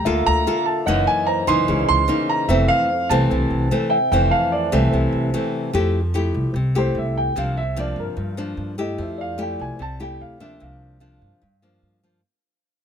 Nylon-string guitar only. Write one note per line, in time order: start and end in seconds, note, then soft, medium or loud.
0.06 0.85 D3 medium
0.06 0.43 A#3 medium
0.06 0.43 F4 medium
0.06 0.43 A4 medium
0.47 0.84 A#3 soft
0.47 0.84 F4 medium
0.47 0.84 A4 medium
0.87 1.66 F#2 medium
0.87 1.45 E3 soft
0.87 1.45 A#3 medium
0.87 1.45 D#4 medium
1.47 2.05 E3 medium
1.47 2.05 A#3 medium
1.47 2.05 D#4 medium
1.68 2.47 C#3 medium
2.08 2.45 E3 soft
2.08 2.46 A#3 soft
2.08 2.46 D#4 medium
2.49 3.28 F2 medium
2.49 2.89 E3 soft
2.49 2.89 A3 medium
2.49 2.90 C4 medium
3.11 3.68 E3 medium
3.11 3.68 A3 medium
3.11 3.68 C4 medium
3.31 4.09 C3 medium
3.71 3.97 E3 soft
3.71 3.97 A3 medium
3.71 3.97 C4 medium
4.12 4.91 F2 medium
4.12 4.69 E3 medium
4.12 4.69 A3 soft
4.12 4.70 C4 medium
4.72 5.29 E3 medium
4.72 5.29 A3 medium
4.72 5.30 C4 medium
4.93 5.72 C3 soft
5.34 5.70 E3 soft
5.34 5.70 A3 medium
5.34 5.71 C4 medium
5.73 6.53 F3 soft
5.73 5.99 A3 medium
5.73 6.00 E4 medium
5.73 6.00 G4 medium
6.14 6.54 A3 soft
6.14 6.54 E4 soft
6.14 6.55 G4 soft
6.56 7.34 C3 medium
6.75 7.32 A3 medium
6.75 7.33 E4 soft
6.75 7.33 G4 medium
7.36 8.15 C3 soft
7.36 7.62 F3 soft
7.36 7.62 A#3 medium
7.36 7.62 D4 medium
7.76 8.34 F3 soft
7.76 8.34 A#3 soft
7.76 8.34 D4 medium
8.17 8.96 G2 soft
8.37 8.74 F3 soft
8.37 8.75 A#3 soft
8.37 8.75 D4 medium
8.78 9.35 A3 medium
8.78 9.35 E4 medium
8.78 9.36 G4 medium
8.98 9.77 F3 soft
9.38 9.78 A3 soft
9.38 9.79 E4 soft
9.38 9.79 G4 medium
9.79 10.58 C3 soft
10.00 10.37 A3 soft
10.00 10.37 E4 soft
10.00 10.37 G4 medium
10.40 10.98 F3 medium
10.40 10.98 A#3 medium
10.40 10.98 D4 medium
10.60 11.39 C3 soft
11.00 11.41 F3 soft
11.00 11.41 A#3 soft
11.00 11.41 D4 soft
11.42 12.21 G2 soft
11.62 12.00 F3 soft
11.62 12.00 A#3 soft
11.62 12.00 D4 soft
12.03 12.20 F3 medium
12.03 12.20 A#3 soft
12.03 12.20 D4 medium